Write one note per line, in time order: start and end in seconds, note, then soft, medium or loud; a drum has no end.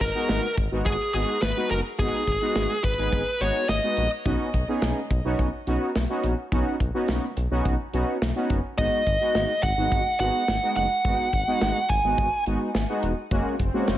0.01 0.11 G#1 loud
0.01 0.54 A#4 medium
0.01 kick medium
0.01 closed hi-hat medium
0.15 0.47 G#3 medium
0.15 0.47 B3 medium
0.15 0.47 D#4 medium
0.15 0.47 F#4 medium
0.29 0.40 G#1 loud
0.29 snare loud
0.29 closed hi-hat medium
0.57 0.68 G#1 loud
0.57 kick medium
0.57 closed hi-hat medium
0.72 0.82 G#1 medium
0.72 0.96 G#3 medium
0.72 0.96 B3 medium
0.72 0.96 D#4 medium
0.72 0.96 F#4 medium
0.86 0.96 G#1 loud
0.86 1.12 G#4 medium
0.86 kick loud
0.86 closed hi-hat medium
1.14 1.24 G#1 loud
1.14 1.38 G#3 medium
1.14 1.38 B3 medium
1.14 1.38 D#4 medium
1.14 1.38 F#4 medium
1.14 1.42 G#4 medium
1.14 closed hi-hat medium
1.42 1.53 G#1 loud
1.42 1.70 B4 medium
1.42 snare loud
1.42 closed hi-hat medium
1.57 1.81 G#3 medium
1.57 1.80 B3 medium
1.57 1.81 D#4 medium
1.57 1.81 F#4 medium
1.71 1.81 F#1 medium
1.71 1.78 A#4 medium
1.71 closed hi-hat medium
1.99 2.09 G#1 loud
1.99 2.23 G#3 medium
1.99 2.23 B3 medium
1.99 2.23 D#4 medium
1.99 2.23 F#4 medium
1.99 2.84 G#4 medium
1.99 kick loud
1.99 closed hi-hat medium
2.27 2.38 G#1 medium
2.27 kick medium
2.27 closed hi-hat medium
2.42 2.73 G#3 medium
2.42 2.73 B3 medium
2.42 2.73 D#4 medium
2.42 2.73 F#4 medium
2.55 2.66 G#1 loud
2.55 snare loud
2.55 closed hi-hat medium
2.84 2.94 G#1 loud
2.84 3.42 B4 loud
2.84 kick medium
2.84 closed hi-hat medium
2.98 3.09 G#1 loud
2.98 3.22 G#3 medium
2.98 3.22 B3 medium
2.98 3.22 D#4 medium
2.98 3.22 G#4 medium
3.12 3.23 G#1 loud
3.12 kick medium
3.12 closed hi-hat medium
3.41 3.51 G#1 loud
3.41 3.65 G#3 medium
3.41 3.65 B3 medium
3.41 3.65 D#4 medium
3.41 3.65 F#4 medium
3.41 3.69 C#5 medium
3.41 closed hi-hat medium
3.69 3.79 G#1 loud
3.69 4.09 D#5 loud
3.69 snare loud
3.69 closed hi-hat medium
3.83 4.07 G#3 medium
3.83 4.07 B3 medium
3.83 4.07 D#4 medium
3.83 4.07 F#4 medium
3.97 4.08 A#1 medium
3.97 closed hi-hat medium
4.26 4.36 B1 loud
4.26 4.50 B3 medium
4.26 4.50 C#4 medium
4.26 4.50 D#4 medium
4.26 4.50 F#4 loud
4.26 kick loud
4.26 closed hi-hat medium
4.54 4.64 B1 loud
4.54 kick medium
4.54 closed hi-hat medium
4.68 5.00 B3 medium
4.68 5.00 C#4 medium
4.68 5.00 D#4 medium
4.68 5.00 G#4 loud
4.82 4.93 B1 loud
4.82 snare loud
4.82 closed hi-hat medium
5.11 5.21 B1 loud
5.11 kick medium
5.11 closed hi-hat medium
5.25 5.35 B1 loud
5.25 5.49 B3 medium
5.25 5.49 C#4 medium
5.25 5.49 D#4 medium
5.25 5.49 F#4 loud
5.39 5.49 B1 loud
5.39 kick loud
5.39 closed hi-hat medium
5.67 5.77 B1 loud
5.67 5.91 B3 medium
5.67 5.91 C#4 medium
5.67 5.91 D#4 medium
5.67 5.91 F#4 loud
5.67 closed hi-hat medium
5.95 6.06 B1 loud
5.95 snare loud
5.95 closed hi-hat medium
6.10 6.33 B3 medium
6.10 6.33 C#4 medium
6.10 6.33 D#4 medium
6.10 6.33 F#4 loud
6.24 6.34 A#1 medium
6.24 closed hi-hat medium
6.52 6.62 B1 loud
6.52 6.76 B3 medium
6.52 6.76 C#4 medium
6.52 6.76 D#4 medium
6.52 6.76 F#4 loud
6.52 kick loud
6.52 closed hi-hat medium
6.80 6.91 B1 loud
6.80 kick medium
6.80 closed hi-hat medium
6.94 7.26 B3 medium
6.94 7.26 C#4 medium
6.94 7.26 D#4 medium
6.94 7.26 F#4 loud
7.08 7.19 B1 loud
7.08 snare loud
7.08 closed hi-hat medium
7.37 7.47 B1 loud
7.37 closed hi-hat medium
7.51 7.61 B1 loud
7.51 7.75 B3 medium
7.51 7.75 C#4 medium
7.51 7.75 D#4 medium
7.51 7.75 F#4 loud
7.65 7.76 B1 loud
7.65 kick medium
7.65 closed hi-hat medium
7.93 8.04 B1 loud
7.93 8.17 B3 medium
7.93 8.17 C#4 medium
7.93 8.17 D#4 medium
7.93 8.17 F#4 loud
7.93 closed hi-hat medium
8.22 8.32 B1 loud
8.22 snare loud
8.22 closed hi-hat medium
8.36 8.60 B3 medium
8.36 8.60 C#4 medium
8.36 8.60 D#4 medium
8.36 8.60 F#4 loud
8.50 8.60 F#1 medium
8.50 kick medium
8.50 closed hi-hat medium
8.78 8.89 G#1 loud
8.78 9.02 G#3 medium
8.78 9.02 B3 medium
8.78 9.02 D#4 medium
8.78 9.02 F#4 medium
8.78 9.62 D#5 medium
8.78 kick loud
8.78 closed hi-hat medium
9.07 9.17 G#1 medium
9.07 kick medium
9.07 closed hi-hat medium
9.21 9.53 G#3 medium
9.21 9.53 B3 medium
9.21 9.53 D#4 medium
9.21 9.53 F#4 medium
9.35 9.45 G#1 loud
9.35 snare loud
9.35 closed hi-hat medium
9.63 9.74 G#1 loud
9.63 10.19 F#5 medium
9.63 kick medium
9.63 closed hi-hat medium
9.77 9.88 G#1 medium
9.77 10.01 G#3 medium
9.77 10.01 B3 medium
9.77 10.01 D#4 medium
9.77 10.01 F#4 medium
9.92 10.02 G#1 loud
9.92 kick loud
9.92 closed hi-hat medium
10.20 10.30 G#1 loud
10.20 10.44 G#3 medium
10.20 10.44 B3 medium
10.20 10.44 D#4 medium
10.20 10.44 F#4 medium
10.20 10.75 F#5 medium
10.20 closed hi-hat medium
10.48 10.58 G#1 loud
10.48 snare loud
10.48 closed hi-hat medium
10.63 10.86 G#3 medium
10.63 10.86 B3 medium
10.63 10.86 D#4 medium
10.63 10.86 F#4 medium
10.76 10.87 F#1 medium
10.76 11.93 F#5 loud
10.76 closed hi-hat medium
11.05 11.15 G#1 loud
11.05 11.29 G#3 medium
11.05 11.29 B3 medium
11.05 11.29 D#4 medium
11.05 11.29 F#4 medium
11.05 kick loud
11.05 closed hi-hat medium
11.33 11.43 G#1 loud
11.33 kick medium
11.33 closed hi-hat medium
11.47 11.79 G#3 medium
11.47 11.79 B3 medium
11.47 11.79 D#4 medium
11.47 11.79 F#4 loud
11.61 11.72 G#1 loud
11.61 snare loud
11.61 closed hi-hat medium
11.89 12.00 G#1 loud
11.89 12.42 G#5 loud
11.89 kick medium
11.89 closed hi-hat medium
12.04 12.14 G#1 loud
12.04 12.28 G#3 medium
12.04 12.28 B3 medium
12.04 12.28 D#4 medium
12.04 12.28 F#4 medium
12.18 12.28 G#1 loud
12.18 kick loud
12.18 closed hi-hat medium
12.46 12.57 G#1 loud
12.46 12.70 G#3 medium
12.46 12.70 B3 medium
12.46 12.70 D#4 medium
12.46 12.70 F#4 medium
12.46 closed hi-hat medium
12.75 12.85 G#1 loud
12.75 snare loud
12.75 closed hi-hat medium
12.89 13.13 G#3 medium
12.89 13.13 B3 medium
12.89 13.13 D#4 medium
12.89 13.13 F#4 medium
13.03 13.13 E1 medium
13.03 closed hi-hat medium
13.31 13.42 F#1 loud
13.31 13.55 G#3 medium
13.31 13.55 A#3 medium
13.31 13.55 C#4 medium
13.31 13.55 F#4 loud
13.31 kick loud
13.31 closed hi-hat medium
13.31 swell medium
13.60 13.70 F#1 medium
13.60 kick medium
13.60 closed hi-hat medium
13.74 13.98 G#3 medium
13.74 13.98 A#3 medium
13.74 13.98 C#4 medium
13.74 13.98 F#4 loud
13.88 13.98 F#1 loud
13.88 snare loud
13.88 closed hi-hat medium